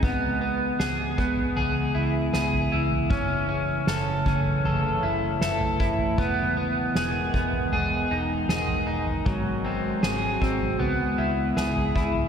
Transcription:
Already playing: ambient pad G#3, clean electric guitar D#4 G#4
0.03 fingered electric bass C#2, ambient pad C#3 E3 B3, clean electric guitar B3, kick, floor tom
0.41 clean electric guitar B3
0.80 fingered electric bass C#2, clean electric guitar G#4, snare
1.18 fingered electric bass C#2, clean electric guitar B3, kick
1.37 floor tom
1.57 fingered electric bass C#2, clean electric guitar G#4, floor tom
1.95 fingered electric bass C#2, clean electric guitar E4
2.33 fingered electric bass C#2, clean electric guitar G#4, snare
2.53 floor tom
2.72 fingered electric bass C#2, clean electric guitar E4
2.91 floor tom
3.10 fingered electric bass F#1, ambient pad F#3 A3, clean electric guitar C#4, kick, floor tom
3.49 clean electric guitar C#4
3.87 fingered electric bass F#1, clean electric guitar A4, snare
4.26 fingered electric bass F#1, clean electric guitar C#4, kick, floor tom
4.45 floor tom
4.64 fingered electric bass F#1, clean electric guitar A4, floor tom
5.03 fingered electric bass F#1, clean electric guitar E4
5.41 fingered electric bass F#1, clean electric guitar A4, snare
5.61 floor tom
5.80 fingered electric bass F#1, clean electric guitar E4, kick
5.99 floor tom
6.18 fingered electric bass E1, ambient pad D#3 G#3 B3, clean electric guitar B3, kick, floor tom
6.57 clean electric guitar B3
6.95 fingered electric bass E1, clean electric guitar G#4, snare
7.34 fingered electric bass E1, clean electric guitar B3, kick
7.53 floor tom
7.72 fingered electric bass E1, clean electric guitar G#4, floor tom
8.10 fingered electric bass E1, clean electric guitar D#4
8.48 fingered electric bass E1, clean electric guitar G#4, snare
8.68 floor tom
8.87 fingered electric bass E1, clean electric guitar D#4
9.07 floor tom
9.26 fingered electric bass G#1, clean electric guitar F#3, ambient pad C4 F#4, kick, floor tom
9.64 clean electric guitar C4
10.03 fingered electric bass G#1, clean electric guitar G#4, snare
10.41 fingered electric bass G#1, clean electric guitar C4, kick
10.61 floor tom
10.79 fingered electric bass C#2, ambient pad C#3 B3 E4, clean electric guitar B3, floor tom
11.18 fingered electric bass C#2, clean electric guitar E4
11.57 fingered electric bass C#2, clean electric guitar G#4, snare
11.76 floor tom
11.96 fingered electric bass C#2, clean electric guitar E4, kick
12.15 floor tom

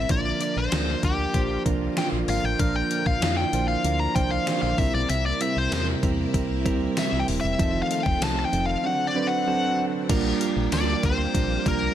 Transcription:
Already playing: synth keys G3 C4 E4 A#4, lead electric guitar E5
0.08 fm bass A#1, string machine D3 A#3 F4, synth keys F3 A#3 D4 A#4, lead electric guitar D5, kick, closed hi-hat
0.40 synth keys F3 A#3 D4 A#4, closed hi-hat
0.56 fm bass A#1, lead electric guitar C5
0.72 fm bass D2, synth keys F3 A#3 D4 A#4, snare, closed hi-hat
1.03 fm bass D2, synth keys F3 A#3 D4 A#4, lead electric guitar G4, kick, closed hi-hat
1.34 fm bass A#1, synth keys F3 A#3 D4 C5, kick, closed hi-hat
1.66 fm bass C2, synth keys F3 A#3 D4 A#4, kick, closed hi-hat
1.96 synth keys F3 A#3 D4 F4, lead electric guitar G5, snare, closed hi-hat
2.12 fm bass A#1
2.28 fm bass G#1, synth keys F3 A#3 D4 A#4, lead electric guitar F5, open hi-hat
2.43 fm bass A1, lead electric guitar G5
2.59 fm bass A#1, synth keys F3 A#3 D4 A#4, lead electric guitar F5, kick, closed hi-hat
2.76 lead electric guitar G5
2.90 synth keys F3 A#3 D4 A#4, closed hi-hat
3.06 fm bass A#1, lead electric guitar F5, kick
3.21 fm bass F2, synth keys F3 A#3 D4 E4, snare, closed hi-hat
3.37 lead electric guitar G5
3.53 fm bass A#1, synth keys F3 A#3 D4 C5, closed hi-hat
3.68 lead electric guitar F5
3.84 fm bass D2, synth keys F3 A#3 D4 A#4, closed hi-hat
4.00 lead electric guitar A#5
4.15 fm bass C2, synth keys F3 A#3 D4 C5, lead electric guitar G5, kick, closed hi-hat
4.31 lead electric guitar F5
4.46 synth keys F3 A#3 D4 C5, snare, closed hi-hat
4.62 fm bass A#1, lead electric guitar F5
4.78 fm bass C2, string machine C3 A#3 E4, synth keys G3 C4 E4 A#4, lead electric guitar E5, kick, open hi-hat
4.94 fm bass B1, lead electric guitar D5
5.10 fm bass C2, lead electric guitar E5, closed hi-hat
5.26 lead electric guitar D5
5.40 synth keys G3 C4 E4 A#4, lead electric guitar E5, closed hi-hat
5.56 fm bass C2, lead electric guitar C5
5.72 fm bass E2, synth keys G3 C4 E4 A#4, snare, closed hi-hat, tambourine
6.03 fm bass E2, synth keys G3 C4 E4 A#4, kick, closed hi-hat
6.34 fm bass C2, synth keys G3 C4 E4 A#4, kick, closed hi-hat
6.65 fm bass D2, synth keys G3 C4 E4 A#4, kick, closed hi-hat
6.96 synth keys G3 C4 E4 A#4, lead electric guitar E5, snare, closed hi-hat, tambourine
7.12 fm bass C2
7.19 lead electric guitar G5
7.27 fm bass D#1, synth keys G3 C4 E4 A#4, open hi-hat
7.41 fm bass E1, lead electric guitar E5
7.58 fm bass F1, string machine D#3 A3 F4, synth keys F3 C4 D#4 A4, kick, closed hi-hat
7.82 lead electric guitar F5
7.90 synth keys F3 C4 D#4 A4, closed hi-hat
8.03 fm bass F1, lead electric guitar G5, kick
8.21 fm bass C2, synth keys F3 C4 D#4 A4, lead electric guitar A5, snare, closed hi-hat, tambourine
8.39 lead electric guitar A5
8.45 lead electric guitar G5
8.52 fm bass F1, synth keys F3 C4 D#4 A4, closed hi-hat
8.66 lead electric guitar F5
8.84 string machine D3 C4 F#4, synth keys F#3 C4 D4 A4, lead electric guitar F#5
9.07 lead electric guitar D5
9.15 synth keys F#3 C4 D4 B4
9.27 lead electric guitar F#5
9.47 synth keys F#3 C4 D4 A4
9.78 synth keys F#3 C4 D4 A4
10.09 fm bass A#1, string machine F3 A#3 G4, synth keys G3 A#3 D4 F4 A#4, kick, closed hi-hat, crash
10.40 synth keys G3 A#3 D4 F4 A#4, closed hi-hat
10.56 fm bass A#1
10.72 fm bass D2, synth keys G3 A#3 D4 F4 A#4, clean electric guitar D4, lead electric guitar D5, snare, closed hi-hat, tambourine
11.03 fm bass D2, synth keys G3 A#3 D4 F4 A#4, clean electric guitar C4, lead electric guitar C5, kick, closed hi-hat
11.34 fm bass A#1, synth keys G3 A#3 D4 F4 A#4, kick, closed hi-hat
11.65 fm bass C2, synth keys G3 A#3 D4 F4 A#4, clean electric guitar A#3, lead electric guitar A#4, kick, closed hi-hat

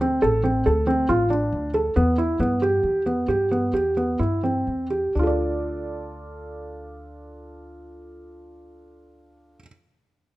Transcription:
Already playing: upright bass D2
0.01 felt piano C4
0.22 upright bass A1, felt piano A4
0.43 felt piano C4
0.66 upright bass D2, felt piano A4
0.87 felt piano C4
1.09 upright bass A1, felt piano F4
1.30 felt piano D4
1.52 upright bass D2
1.74 felt piano A4
1.96 upright bass E2, felt piano B3
2.18 felt piano E4
2.39 upright bass G2, felt piano B3
2.62 felt piano G4
2.83 upright bass E2
3.06 felt piano B3
3.28 upright bass G2, felt piano G4
3.51 felt piano B3
3.73 upright bass E2, felt piano G4
3.97 felt piano B3
4.19 upright bass G2, felt piano E4
4.43 felt piano C4
4.67 upright bass E2
4.90 felt piano G4
5.15 upright bass D2, felt piano D4 F4
5.23 felt piano A4 D5

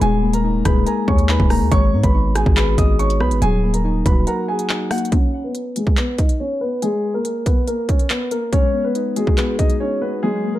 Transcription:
0.01 808-style bass D#1, synth keys G#3, upright piano G#4 G#5, closed hi-hat
0.22 synth keys A#3
0.33 upright piano A#4 A#5, closed hi-hat
0.44 synth keys D#4
0.65 808-style bass D#1, synth keys G#4, upright piano B4 B5, kick, cross-stick, closed hi-hat
0.86 upright piano A#4 A#5, synth keys G#5, closed hi-hat
1.08 808-style bass D#2, upright piano C#5 C#6, kick
1.18 closed hi-hat
1.29 synth keys D#4, upright piano B4 B5, clap
1.40 808-style bass D#1, kick
1.50 synth keys A#3, upright piano A#4 A#5, cross-stick, open hi-hat
1.61 808-style bass D#2
1.72 808-style bass G#1, synth keys G#3, upright piano C#5 C#6, kick, closed hi-hat
1.93 808-style bass G#2, synth keys B3
2.03 808-style bass G#1, upright piano B4 B5, kick, closed hi-hat
2.14 synth keys D#4
2.35 synth keys F#4, upright piano G#4 G#5, cross-stick, closed hi-hat
2.46 808-style bass G#1, kick
2.56 synth keys G#4, upright piano B4 B5, clap, closed hi-hat
2.78 808-style bass G#1, upright piano D#5 D#6, kick, closed hi-hat
2.99 synth keys D#4, upright piano C#5 C#6, closed hi-hat
3.10 closed hi-hat
3.21 808-style bass B1, synth keys B3, upright piano B4 B5, cross-stick
3.31 808-style bass G#1, closed hi-hat
3.42 808-style bass D#1, synth keys F#3, upright piano G#4 G#5, closed hi-hat
3.63 synth keys A#3
3.74 upright piano A#4 A#5, closed hi-hat
3.84 synth keys D#4
4.06 808-style bass D#1, synth keys F#4, upright piano B4 B5, kick, closed hi-hat
4.27 upright piano A#4 A#5, synth keys F#5, closed hi-hat
4.48 upright piano G#4 G#5
4.59 closed hi-hat
4.69 synth keys D#4, clap
4.91 synth keys A#3, upright piano F#4 F#5, cross-stick, closed hi-hat, open hi-hat
4.98 closed hi-hat
5.05 closed hi-hat
5.12 upright piano C#4 C#5, kick, closed hi-hat
5.44 upright piano B3 B4
5.55 closed hi-hat
5.76 upright piano G#3 G#4, closed hi-hat
5.87 kick
5.97 upright piano B3 B4, clap, closed hi-hat
6.18 upright piano D#4 D#5, kick, closed hi-hat
6.29 closed hi-hat
6.40 upright piano C#4 C#5
6.61 upright piano B3 B4
6.82 upright piano G#3 G#4, closed hi-hat
7.14 upright piano A#3 A#4
7.25 closed hi-hat
7.46 upright piano B3 B4, kick, closed hi-hat
7.67 upright piano A#3 A#4, closed hi-hat
7.89 upright piano C#4 C#5, kick, closed hi-hat
7.99 closed hi-hat
8.10 upright piano B3 B4, clap, closed hi-hat
8.31 upright piano A#3 A#4, closed hi-hat
8.53 synth keys G#3, upright piano C#4 C#5, kick, closed hi-hat
8.74 synth keys B3
8.84 upright piano B3 B4
8.95 synth keys D#4, closed hi-hat
9.16 upright piano G#3 G#4, synth keys F#4, closed hi-hat
9.27 kick
9.37 upright piano B3 B4, synth keys G#4, clap, closed hi-hat
9.59 upright piano D#4 D#5, kick, closed hi-hat
9.70 closed hi-hat
9.80 upright piano C#4 C#5, synth keys D#4
10.01 synth keys B3, upright piano B3 B4
10.23 synth keys F#3, upright piano G#3 G#4
10.44 synth keys A#3
10.55 upright piano A#3 A#4

